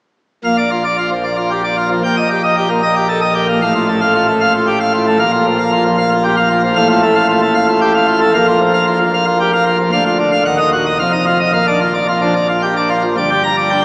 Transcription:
pipe organ
0.44 A#1 A#2 F5
0.58 D5
0.71 F4
0.84 D5
0.98 F4
1.11 F3
1.24 D5
1.37 F4
1.51 G4
1.64 D5
1.77 F4
1.91 F3
2.04 A#1 A#2 G5
2.17 D#5
2.30 G4
2.43 D#5
2.57 G4
2.69 A#3
2.83 D#5
2.96 G4
3.09 A4
3.21 D#5
3.35 G4
3.48 A#3
3.62 A1 A2 F5
3.75 F4
3.89 A3
4.01 F5
4.14 F4
4.28 A3
4.41 F5
4.54 F4
4.67 G4
4.81 F5
4.94 F4
5.07 A3
5.19 A#1 A#2 F5
5.33 F4
5.47 F3
5.59 F5
5.72 F4
5.85 F3
5.98 F5
6.11 F4
6.24 G4
6.37 F5
6.50 F4
6.64 F3
6.76 A1 A2 F5
6.89 F4
7.03 A3
7.15 F5
7.29 F4
7.42 A3
7.55 F5
7.68 F4
7.81 G4
7.95 F5
8.08 F4
8.21 A3
8.34 A#1 A#2 F5
8.47 F4
8.61 F3
8.74 F5
8.87 F4
9.00 F3
9.14 F5
9.27 F4
9.40 G4
9.53 F5
9.66 F4
9.79 F3
9.92 D1 D2 F5
10.05 F4
10.19 D3
10.32 F5
10.45 D#1 D#2 F#5
10.58 D#4 D#5
10.73 F#4
10.86 D#5
10.99 F1 F2 F5
11.12 D#4 D#5
11.26 F4
11.40 D#5
11.53 A#1 A#2 F5
11.67 D4 D5
11.80 F4
11.94 D5
12.08 F4
12.21 F3 D4
12.35 D5
12.49 F4
12.62 G4
12.76 D4 D5
12.90 F4
13.04 F3
13.17 G1 G2 D5
13.30 G4
13.44 A#5
13.57 D5
13.70 D4 G5

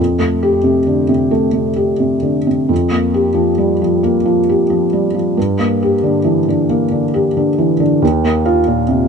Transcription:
felt piano
Already playing: F2
0.19 A3
0.43 G4
0.64 C3
0.87 D3
1.09 C3
1.31 A3
1.53 C3
1.76 G4
2.00 C3
2.22 D3
2.47 C3
2.69 F2
2.91 A#3
3.14 G4
3.34 F3
3.58 G3
3.82 F3
4.03 A#3
4.26 F3
4.49 G4
4.70 F3
4.93 G3
5.14 F3
5.37 G2
5.59 A#3
5.83 G4
6.03 D3
6.24 E3
6.49 D3
6.70 A#3
6.92 D3
7.14 G4
7.37 D3
7.58 E3
7.80 D3
8.02 D#2
8.24 A#3
8.46 F4
8.67 A#2
8.89 C3

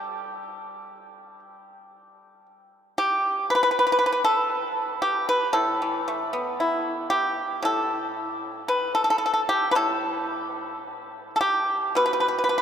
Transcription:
pipa
Already playing: G3 G4
2.98 G4
3.50 B4
3.55 B4
3.63 B4
3.71 B4
3.79 B4
3.87 B4
3.92 B4
3.99 B4
4.06 B4
4.12 B4
4.25 A4
5.02 G4
5.29 B4
5.53 A2 A4
5.82 E3
6.08 A3
6.33 B3
6.60 E4
7.10 G4
7.62 A2 A4
8.68 B4
8.95 A4
9.04 A4
9.10 A4
9.18 A4
9.26 A4
9.34 A4
9.49 G4
9.71 A2 B4
9.76 A4
11.36 A4
11.41 G4
11.95 B2 B4
12.06 B4
12.13 B4
12.20 B4
12.28 B4
12.39 B4
12.44 B4
12.49 B4
12.58 B4

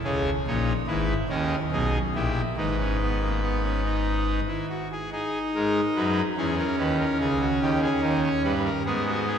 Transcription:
pipe organ
0.04 C#2 C#3 C#4 G#4
0.47 A#1 A#2 D#4 C#5
0.87 G#1 G#2 E4 B4
1.29 D#2 D#3 C#4 A#4
1.72 B1 B2 D#4 G#4
2.15 A#1 A#2 E4 G4
2.57 G#1 G#2 D#4 B4
2.79 C#4
3.01 B3
3.22 A#3
3.42 B3
3.63 C#4
3.85 D#4
4.48 E4
4.70 F#4
4.92 G#4
5.12 D#4 G#4
5.55 G#2 G#3 A#4
5.96 F#2 F#3 B4
6.37 E2 E3 C#4 G#4
6.58 A#4
6.78 D#2 D#3 B4
7.00 A#4
7.20 C#2 C#3 G#4
7.41 F#4
7.61 D#2 D#3 G4
7.82 G#4
8.02 D#2 D#3 A#4
8.23 C#5
8.43 G2 G3 B4
8.64 A#4
8.85 G#2 G#3 B3 G#4
9.07 F#4
9.27 G#4

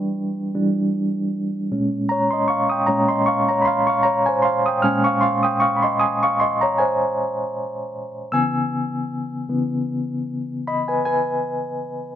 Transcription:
reed electric piano
Already playing: E3 G3 D4 B4 D5 E5 G5 B5 C#6
0.55 E3 G3 D4
1.72 A#2 G#3 C#4
2.09 C#5 A#5
2.31 D#5 C6
2.48 F5 C#6
2.70 G5 D#6
2.87 A#2 G#3 C#4 C#5 A#5
3.08 D#5 C6
3.26 F5 C#6
3.49 C#5 A#5
3.62 B5 C6
3.68 F5
3.87 F5 C#6
4.03 C#5 A#5
4.26 C5 G#5
4.42 F5 C6
4.66 G5 D#6
4.82 A#2 G#3 C#4 G#5 F6
5.04 F5 C#6
5.21 F5 C6
5.43 G5 D#6
5.60 F5 C#6
5.77 B5
5.82 D#5 C6
5.99 G#5 D#6
6.23 F5 C#6
6.40 D#5 C6
6.61 C#5 A#5
6.78 C5 G#5
8.32 C#3 E3 B3 G#5 E6
9.49 C#3 E3 B3
10.67 D#5 B5
10.88 B4 G#5
11.05 B4 G#5

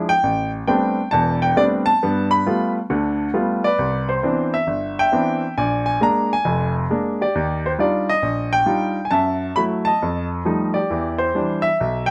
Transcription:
grand piano
Already playing: F3 G#3 D4 E4
0.09 G5
0.23 A1
0.68 G3 A3 B3 C4 D4 G5
1.11 E1 E2 A5
1.42 G5
1.56 G3 A3 B3 C4 D4 D5
1.86 A5
2.03 G2 B3
2.31 B5
2.46 G3 A3 B3 F4
2.90 D2 D3
3.34 G3 A3 B3 F4
3.64 B4 D5
3.79 C2
4.09 C5
4.23 E3 B3 C4 D4
4.54 E5
4.67 G1
4.99 E5 G5
5.12 E3 B3 C4 D4
5.57 A#1 D5 G#5
5.86 G#5
6.01 G#3 A#3 D4 A#5
6.33 G#5
6.45 F1 F2
6.90 G#3 A#3 D4
7.21 G4 D5
7.35 D#2
7.66 C5
7.79 G3 D4 D#4 F4 D5
8.09 D#5
8.22 A#1
8.53 G5
8.66 G3 D4 D#4 F4
9.05 G#5
9.11 F#2 E5 A5
9.56 F#3 A3 E4 B5
9.85 D#5 A5
10.02 F2
10.45 F3 G3 A3 D#4
10.74 G4 D5
10.90 E2 E3
11.18 C5
11.35 E3 G3 D4
11.62 E5
11.80 B1
12.06 G5

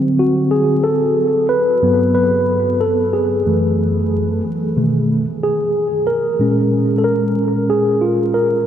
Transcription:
tine electric piano
Already playing: D3 F#3 C4
0.19 F#4
0.51 G#4
0.84 A4
1.49 B4
1.82 G2 F#3 B3
2.14 B4
2.81 A4
3.13 G#4
3.46 F#2 E3 A3
4.76 B2 D#3 A3
5.43 G#4
6.07 A#4
6.39 A#2 G#3 C#4
6.98 A4
7.04 A#4
7.70 G#4
8.01 F4
8.34 A#4

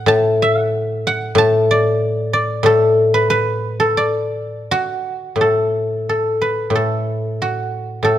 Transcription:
guzheng
Already playing: A4 B4 F#5
0.06 A2 A5
0.42 E5
0.60 F#5
1.07 F#5
1.35 A2 A5
1.71 D5
2.33 D5
2.63 A2 A4
3.14 B4
3.30 B4
3.80 A4
3.97 D5
4.71 F#4
5.36 A2
5.41 A4
6.09 A4
6.41 B4
6.70 A2
6.75 A4
7.42 F#4
8.03 A2 A4

